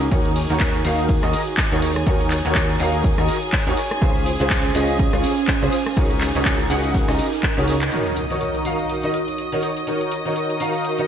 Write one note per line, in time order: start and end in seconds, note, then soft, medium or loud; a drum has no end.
0.00 4.56 D#4 medium
0.00 3.77 F#4 medium
0.00 0.10 G#4 medium
0.00 1.00 A#4 medium
0.00 0.10 G#5 medium
0.00 closed hi-hat soft
0.00 ride soft
0.00 tambourine soft
0.11 0.37 D#3 medium
0.11 0.37 D#4 medium
0.11 0.37 F#4 medium
0.11 7.93 G#4 medium
0.11 0.37 A#4 medium
0.11 0.37 C#5 medium
0.11 7.93 G#5 medium
0.11 kick loud
0.11 closed hi-hat medium
0.11 ride medium
0.11 tambourine soft
0.25 closed hi-hat soft
0.35 snare soft
0.35 open hi-hat loud
0.35 ride medium
0.35 tambourine medium
0.49 0.83 D#2 loud
0.49 0.82 D#3 medium
0.49 0.82 D#4 medium
0.49 0.82 F#4 medium
0.49 0.82 A#4 medium
0.49 0.82 C#5 medium
0.49 snare medium
0.49 closed hi-hat soft
0.49 tambourine soft
0.60 kick loud
0.60 snare loud
0.60 clap loud
0.60 closed hi-hat medium
0.60 tambourine medium
0.60 tambourine soft
0.74 snare soft
0.74 closed hi-hat soft
0.74 tambourine soft
0.84 1.20 D#2 loud
0.84 1.20 D#3 medium
0.84 1.20 D#4 medium
0.84 1.20 F#4 medium
0.84 1.20 A#4 medium
0.84 1.20 F5 medium
0.84 open hi-hat loud
0.84 ride medium
0.84 tambourine loud
0.84 tambourine medium
0.94 3.77 C#5 medium
0.98 closed hi-hat soft
0.98 tambourine soft
1.09 kick loud
1.09 closed hi-hat medium
1.09 ride medium
1.09 tambourine soft
1.23 1.35 D#2 medium
1.23 1.38 D#3 medium
1.23 1.38 D#4 medium
1.23 1.38 F#4 medium
1.23 1.38 A#4 medium
1.23 1.38 D#5 medium
1.23 cross-stick medium
1.23 closed hi-hat soft
1.23 tambourine soft
1.33 open hi-hat loud
1.33 ride medium
1.33 tambourine loud
1.33 tambourine medium
1.47 closed hi-hat soft
1.47 tambourine soft
1.57 kick loud
1.57 snare loud
1.57 clap loud
1.57 closed hi-hat medium
1.57 tambourine soft
1.57 tambourine medium
1.72 2.04 D#2 medium
1.72 1.86 D#3 loud
1.72 1.86 D#4 medium
1.72 1.86 F#4 medium
1.72 1.86 A#4 medium
1.72 1.86 C#5 loud
1.72 closed hi-hat soft
1.82 open hi-hat loud
1.82 ride medium
1.82 tambourine medium
1.96 cross-stick medium
1.96 closed hi-hat soft
1.96 tambourine soft
2.06 2.32 D#3 medium
2.06 2.32 D#4 medium
2.06 2.32 F#4 medium
2.06 2.32 A#4 medium
2.06 2.32 C#5 medium
2.06 kick loud
2.06 closed hi-hat medium
2.06 ride medium
2.06 tambourine medium
2.06 tambourine soft
2.20 closed hi-hat soft
2.20 tambourine soft
2.30 clap medium
2.30 open hi-hat loud
2.30 ride medium
2.30 tambourine medium
2.45 2.78 D#2 loud
2.45 2.77 D#3 medium
2.45 2.77 D#4 medium
2.45 2.77 F#4 medium
2.45 2.77 A#4 medium
2.45 2.77 C#5 medium
2.45 closed hi-hat soft
2.45 tambourine soft
2.55 kick loud
2.55 snare loud
2.55 clap loud
2.55 closed hi-hat medium
2.55 tambourine soft
2.69 snare soft
2.69 closed hi-hat soft
2.69 tambourine soft
2.79 3.15 D#2 loud
2.79 3.15 D#3 medium
2.79 3.15 D#4 medium
2.79 3.15 F#4 medium
2.79 3.15 A#4 medium
2.79 3.15 F5 medium
2.79 open hi-hat loud
2.79 ride medium
2.79 tambourine medium
2.94 closed hi-hat soft
2.94 tambourine soft
3.04 kick loud
3.04 closed hi-hat medium
3.04 ride medium
3.04 tambourine soft
3.18 3.30 D#2 medium
3.18 3.33 D#3 medium
3.18 3.33 D#4 medium
3.18 3.33 F#4 medium
3.18 3.33 A#4 medium
3.18 3.33 D#5 medium
3.18 cross-stick medium
3.18 closed hi-hat soft
3.18 ride soft
3.18 tambourine soft
3.28 open hi-hat loud
3.28 ride medium
3.28 tambourine loud
3.28 tambourine medium
3.42 closed hi-hat soft
3.42 tambourine soft
3.52 kick loud
3.52 snare loud
3.52 clap loud
3.52 closed hi-hat medium
3.52 tambourine soft
3.67 3.74 D#2 loud
3.67 3.76 D#4 loud
3.67 3.76 F#4 medium
3.67 3.76 A#4 medium
3.67 3.76 C#5 loud
3.67 closed hi-hat soft
3.77 6.62 C#4 medium
3.77 open hi-hat loud
3.77 ride medium
3.77 tambourine medium
3.91 cross-stick medium
3.91 closed hi-hat soft
3.91 ride soft
3.91 tambourine soft
4.01 4.37 C#2 medium
4.01 4.27 C#3 medium
4.01 4.27 C#4 medium
4.01 4.27 F4 medium
4.01 4.27 G#4 medium
4.01 4.27 C5 medium
4.01 kick loud
4.01 closed hi-hat medium
4.01 ride medium
4.01 tambourine medium
4.01 tambourine soft
4.16 closed hi-hat soft
4.26 snare soft
4.26 open hi-hat loud
4.26 ride medium
4.26 tambourine medium
4.40 4.73 C#2 loud
4.40 4.72 C#3 medium
4.40 4.72 C#4 medium
4.40 4.72 F4 medium
4.40 4.72 G#4 medium
4.40 6.54 C5 medium
4.40 4.72 C5 medium
4.40 snare medium
4.40 closed hi-hat soft
4.40 tambourine soft
4.50 kick loud
4.50 snare loud
4.50 clap loud
4.50 closed hi-hat medium
4.50 tambourine soft
4.64 5.72 F5 medium
4.64 snare medium
4.64 closed hi-hat soft
4.64 tambourine soft
4.75 5.10 C#2 medium
4.75 5.10 C#3 medium
4.75 5.10 C#4 medium
4.75 5.10 F4 medium
4.75 5.10 G#4 medium
4.75 5.10 D#5 medium
4.75 open hi-hat loud
4.75 ride medium
4.75 tambourine medium
4.75 tambourine loud
4.89 closed hi-hat soft
4.89 tambourine soft
4.99 kick loud
4.99 closed hi-hat medium
4.99 ride loud
4.99 tambourine soft
4.99 tambourine medium
5.13 5.25 C#2 medium
5.13 5.28 C#3 medium
5.13 5.28 C#4 medium
5.13 5.28 F4 medium
5.13 5.28 G#4 medium
5.13 5.28 C#5 loud
5.13 cross-stick medium
5.13 closed hi-hat soft
5.13 tambourine soft
5.23 open hi-hat loud
5.23 ride medium
5.23 tambourine medium
5.38 closed hi-hat soft
5.38 tambourine soft
5.48 kick loud
5.48 snare loud
5.48 clap loud
5.48 closed hi-hat medium
5.48 ride medium
5.48 tambourine soft
5.62 5.69 C#2 loud
5.62 5.71 C#3 loud
5.62 5.71 C#4 medium
5.62 5.71 F4 medium
5.62 5.71 G#4 medium
5.62 5.71 C5 loud
5.62 closed hi-hat soft
5.72 11.07 D#4 medium
5.72 open hi-hat loud
5.72 ride medium
5.72 tambourine medium
5.86 cross-stick medium
5.86 closed hi-hat soft
5.86 tambourine soft
5.97 6.32 C#2 medium
5.97 6.22 C#3 medium
5.97 6.22 D#4 medium
5.97 6.22 F#4 medium
5.97 6.22 A#4 medium
5.97 6.22 C#5 medium
5.97 kick loud
5.97 closed hi-hat medium
5.97 ride medium
5.97 tambourine soft
6.11 closed hi-hat soft
6.11 tambourine soft
6.21 clap medium
6.21 open hi-hat loud
6.21 ride medium
6.21 tambourine medium
6.35 6.68 C#2 loud
6.35 6.67 C#3 medium
6.35 6.67 D#4 medium
6.35 6.67 F#4 medium
6.35 6.67 A#4 medium
6.35 9.38 A#4 medium
6.35 6.67 C#5 medium
6.35 closed hi-hat soft
6.35 tambourine soft
6.45 kick loud
6.45 snare loud
6.45 clap loud
6.45 closed hi-hat medium
6.45 tambourine medium
6.45 tambourine soft
6.59 snare soft
6.59 closed hi-hat soft
6.59 tambourine soft
6.70 7.06 C#2 medium
6.70 7.05 C#3 medium
6.70 7.05 D#4 medium
6.70 7.05 F#4 medium
6.70 11.07 F#4 medium
6.70 7.05 A#4 medium
6.70 7.05 F#5 medium
6.70 snare loud
6.70 open hi-hat loud
6.70 ride medium
6.70 tambourine medium
6.70 tambourine loud
6.84 closed hi-hat soft
6.84 tambourine soft
6.94 kick loud
6.94 snare loud
6.94 closed hi-hat medium
6.94 ride medium
6.94 tambourine medium
6.94 tambourine soft
7.08 7.20 C#2 medium
7.08 7.23 C#3 medium
7.08 7.23 D#4 medium
7.08 7.23 F#4 medium
7.08 7.23 A#4 medium
7.08 7.23 D#5 medium
7.08 cross-stick medium
7.08 snare loud
7.08 closed hi-hat soft
7.08 ride medium
7.08 tambourine soft
7.19 snare soft
7.19 open hi-hat loud
7.19 ride medium
7.19 tambourine medium
7.19 tambourine loud
7.33 snare soft
7.33 closed hi-hat soft
7.33 tambourine soft
7.43 kick loud
7.43 clap loud
7.43 closed hi-hat medium
7.43 ride medium
7.43 tambourine soft
7.57 7.90 C#2 medium
7.57 7.72 C#3 loud
7.57 7.72 D#4 medium
7.57 7.72 F#4 medium
7.57 7.72 A#4 medium
7.57 7.72 C#5 loud
7.57 snare soft
7.57 closed hi-hat soft
7.57 tambourine soft
7.67 snare loud
7.67 open hi-hat loud
7.67 ride medium
7.67 tambourine medium
7.82 snare soft
7.82 clap medium
7.82 closed hi-hat soft
7.82 tambourine soft
7.92 8.17 D#3 medium
7.92 8.17 D#4 medium
7.92 8.17 F#4 medium
7.92 8.17 A#4 medium
7.92 8.17 C#5 medium
7.92 11.07 D#5 medium
7.92 11.07 D#6 medium
7.92 closed hi-hat medium
7.92 crash medium
7.92 tambourine soft
7.92 impact medium
8.06 closed hi-hat soft
8.16 11.07 C#5 medium
8.16 closed hi-hat medium
8.16 tambourine medium
8.30 8.63 D#3 medium
8.30 8.63 D#4 medium
8.30 8.63 F#4 medium
8.30 8.63 A#4 medium
8.30 8.63 C#5 medium
8.30 closed hi-hat soft
8.30 tambourine soft
8.41 closed hi-hat medium
8.41 tambourine soft
8.55 closed hi-hat soft
8.65 9.00 D#3 medium
8.65 9.00 D#4 medium
8.65 9.00 F#4 medium
8.65 9.00 A#4 medium
8.65 9.00 F5 medium
8.65 closed hi-hat medium
8.65 tambourine medium
8.79 closed hi-hat soft
8.79 tambourine soft
8.89 closed hi-hat medium
8.89 tambourine soft
9.03 9.18 D#3 medium
9.03 9.18 D#4 medium
9.03 9.18 F#4 medium
9.03 9.18 A#4 medium
9.03 9.18 D#5 medium
9.03 closed hi-hat soft
9.03 tambourine soft
9.14 closed hi-hat medium
9.14 tambourine medium
9.28 closed hi-hat soft
9.28 tambourine soft
9.38 closed hi-hat medium
9.38 tambourine soft
9.52 9.67 D#3 medium
9.52 9.67 D#4 medium
9.52 9.67 F#4 medium
9.52 9.67 A#4 medium
9.52 9.67 C#5 loud
9.52 closed hi-hat soft
9.63 closed hi-hat medium
9.63 tambourine medium
9.77 closed hi-hat soft
9.77 tambourine soft
9.87 10.12 D#3 medium
9.87 10.12 D#4 medium
9.87 10.12 F#4 medium
9.87 10.12 A#4 medium
9.87 10.12 C#5 medium
9.87 closed hi-hat medium
9.87 tambourine soft
10.01 closed hi-hat soft
10.11 closed hi-hat medium
10.11 tambourine medium
10.25 10.58 D#3 medium
10.25 10.58 D#4 medium
10.25 10.58 F#4 medium
10.25 10.58 A#4 medium
10.25 10.58 C#5 medium
10.25 closed hi-hat soft
10.25 tambourine soft
10.36 closed hi-hat medium
10.36 tambourine soft
10.50 closed hi-hat soft
10.60 10.95 D#3 medium
10.60 10.95 D#4 medium
10.60 10.95 F#4 medium
10.60 10.95 A#4 medium
10.60 10.95 F5 medium
10.60 closed hi-hat medium
10.60 tambourine medium
10.74 closed hi-hat soft
10.74 tambourine soft
10.85 closed hi-hat medium
10.85 tambourine soft
10.99 11.07 D#3 medium
10.99 11.07 D#4 medium
10.99 11.07 F#4 medium
10.99 11.07 A#4 medium
10.99 11.07 D#5 medium
10.99 closed hi-hat soft
10.99 tambourine soft